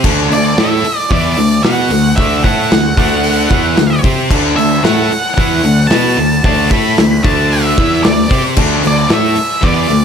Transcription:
0.04 D2 D3 A3 D4, kick, crash
0.30 D2 D3 A3 D5, open hi-hat
0.57 A2 A3 E4 A4 E5, snare, open hi-hat
0.83 muted picked electric bass stroke, muted distorted electric guitar stroke, muted overdriven electric guitar stroke, open hi-hat
1.10 E2 E3 B3 E4 D5, kick, open hi-hat
1.37 D2 D3 A3, open hi-hat
1.63 B2 B3 F#4 B4 F#5, snare, open hi-hat
1.90 D2 D3 A3, open hi-hat
2.16 D2 D3 A3 D4 E5, kick, open hi-hat
2.44 A2 A3 E4 A4 F#5, kick, open hi-hat
2.71 D2 D3 A3, snare, open hi-hat
2.97 D2 D3 A3 D4, kick, open hi-hat
3.23 open hi-hat
3.49 E2 E3 B3 E4, kick, open hi-hat
3.76 D2 D3 A3, snare, open hi-hat
4.04 C3 C4 G4 C5, kick, open hi-hat
4.30 D2 D3 A3 D4, kick, crash
4.56 D2 D3 A3 E5, open hi-hat
4.83 A2 A3 E4 A4 F#5, snare, open hi-hat
5.09 muted overdriven electric guitar stroke, muted picked electric bass stroke, muted distorted electric guitar stroke, open hi-hat
5.34 E2 E3 B3 E4 F#5, kick
5.38 open hi-hat
5.63 D2 D3 A3, open hi-hat
5.87 B2 B3 F#4 A5, snare, open hi-hat
5.91 B4
6.17 D2 D3 A3, open hi-hat
6.44 D2 D3 A3 D4 A5, kick, open hi-hat
6.70 A2 A3 E4 A4 B5, kick, open hi-hat
6.98 D2 D3 A3, snare, open hi-hat
7.24 D2 D3 A3 D4 A5, kick, open hi-hat
7.49 E5, open hi-hat
7.78 E2 E3 B3 E4, kick, open hi-hat
8.03 D2 D3 A3 D5, snare, open hi-hat
8.29 C3 C4 G4 C5, kick, open hi-hat
8.56 D2 D3 A3 D4, kick, crash
8.83 D2 D3 A3, open hi-hat
8.87 D5
9.09 A2 A3 E4 A4, snare, open hi-hat
9.13 E5
9.35 muted overdriven electric guitar stroke, muted picked electric bass stroke, muted distorted electric guitar stroke, open hi-hat
9.61 E2 E3 B3 E4 D5, kick, open hi-hat
9.89 D2 D3 A3, open hi-hat

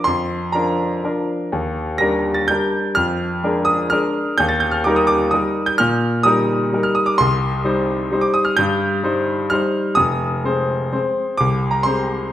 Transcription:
0.04 F2 C6
0.52 F3 D4 A#4 A#5
1.04 F3 D4 A#4
1.52 D#2
1.98 G3 D4 A#4 A#6
2.34 A6
2.48 G3 D4 A#4 G6
2.95 F2 F6
3.43 G#3 D4 A#4
3.65 D#6
3.90 G#3 D4 A#4 F6
4.38 D#2 G6
4.49 A6
4.60 G6
4.71 F6
4.84 G3 D#4 A#4 D6
4.96 D#6
5.07 D6
5.31 G3 D#4 A#4 D#6
5.66 G6
5.78 A#2 F6
6.23 G3 D#4 A#4 D#6
6.73 G3 D#4 A#4
6.83 F6
6.95 D#6
7.06 D6
7.18 C2 C6
7.65 G3 D#4 C5
8.12 G3 D#4 C5
8.21 D6
8.34 D#6
8.45 F6
8.57 G2 G6
9.03 G3 D#4 C5
9.50 G3 D#4 C5 F6
9.95 F1 D#6
10.44 G#3 C4 C5
10.92 G#3 C4 C5
11.38 C2 D6
11.71 A#5
11.83 G#3 C4 C5 C6

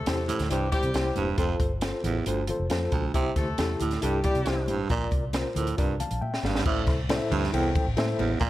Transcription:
Already playing: C3 A3 A4
0.06 E2 E4 G4 C5, snare, closed hi-hat, high conga
0.28 A2, closed hi-hat, muted conga, low conga
0.39 D2, snare, closed hi-hat
0.49 C2 G2 G3 E4 G4 C5, closed hi-hat
0.71 G3 E4 G4 C5, kick, closed hi-hat, muted conga, low conga
0.83 C3, closed hi-hat
0.94 C2 E4 G4 C5, snare, closed hi-hat, high conga
1.16 E1 G2, closed hi-hat, high conga
1.37 F1 F2 F4 A4 C5, kick, closed hi-hat, muted conga
1.60 G1, kick, closed hi-hat, muted conga
1.81 F4 A4 C5, snare, closed hi-hat, high conga
2.04 A1 E2, closed hi-hat, muted conga, low conga
2.26 G1 D2 F4 A4 C5, closed hi-hat
2.47 F4 A4 C5, closed hi-hat, muted conga, low conga
2.59 F1
2.70 F2 F4 A4 C5, snare, closed hi-hat, high conga
2.92 B1 D2, kick, closed hi-hat, high conga
3.14 C2 C3 E4 G4 C5, kick, closed hi-hat, muted conga
3.35 D2 A3 A4, kick, snare, closed hi-hat, muted conga
3.58 E2 E4 G4 A4, snare, closed hi-hat, high conga
3.80 D2 A2, closed hi-hat, muted conga, low conga
3.91 snare, closed hi-hat
4.02 C2 G2 G3 E4 G4 A4, closed hi-hat
4.23 G3 E4 G4 D5, kick, closed hi-hat, muted conga, low conga
4.35 C3, closed hi-hat
4.45 C2 E4 G4 C5, snare, closed hi-hat, high conga
4.68 A1 G2, closed hi-hat, high conga
4.90 A#1 A#2 F4 A#4 D5, kick, closed hi-hat, muted conga
5.11 C2, kick, closed hi-hat, muted conga
5.33 F4 A#4 C5, snare, closed hi-hat, high conga
5.55 D2 A2, closed hi-hat, low conga
5.67 closed hi-hat
5.77 C2 G2 F4 A#4 D5, kick, closed hi-hat
6.00 F5 A5, closed hi-hat, muted conga, low conga
6.11 A#1, closed hi-hat
6.21 A#2 E5 G5, high conga
6.34 snare
6.43 G#1 G2 D5 F5, snare, high conga
6.55 snare
6.65 A1 A2 E4 A4 C5 E5, kick, crash, muted conga
6.87 C2, kick, snare, ride, muted conga
7.09 E4 A4 C5 D5, snare, ride, high conga
7.16 E5
7.31 D2 G2, ride, low conga
7.44 snare
7.52 C2 E2 E4 A4 C5 G5, ride
7.75 kick, ride, muted conga, low conga
7.87 A1
7.97 A2 E4 A4 C5 E5, snare, ride, high conga
8.18 A1 E2, ride, high conga
8.40 A#1 A#2 F4 A#4 D5 F5, kick, ride, muted conga

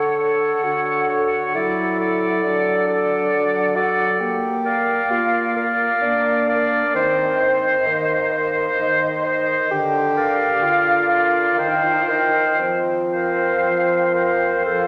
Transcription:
Already playing: D3 A4 C#5 F#5
0.19 A4 C#5 F#5
0.64 D3 F#4
1.10 A4 C#5 F#5
1.54 F#3 E4 A4 D5 F#5
1.99 A4 D5 F#5
2.43 F#3 D4
2.88 A4 D5 F#5
3.32 F#3
3.75 F#4 A4 D5 F#5
4.20 A#3 G4
4.65 A#4 D5 F5
5.10 A#3 F4
5.56 A#4 D5 F5
6.02 A#3 D4
6.48 A#4 D5 F5
6.95 D#3 C4 C5 D#5
7.39 C5 D#5
7.87 D#3 A#3
8.32 C5 D#5
8.79 D#3
9.24 C5 D#5
9.71 D3 G4
10.17 A#4 D5 F5
10.63 D3 F4
11.09 A#4 D5 F5
11.58 D#3 D#4 A#4 C5 G5
11.68 F4
11.76 D#4
11.84 F4
11.93 D#4
12.02 F4
12.08 D#4 A#4 C5 G5
12.19 F4
12.27 D#4
12.59 F3 C4
13.12 A#4 C5 F5
13.64 F3
14.14 A#4 C5 F5
14.63 F3 A4 C5 F5

